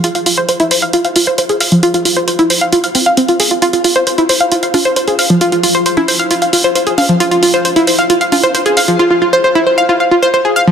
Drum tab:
HH |xxoxxxoxxxoxxxox|xxoxxxoxxxoxxxox|xxoxxxoxxxoxxxox|xxoxxxoxxxoxxxox|
CG |----------------|----------------|----------o-----|-----o--------o-|

HH |xxoxxxoxxxoxxxox|----------------|
CG |----------o-----|----------------|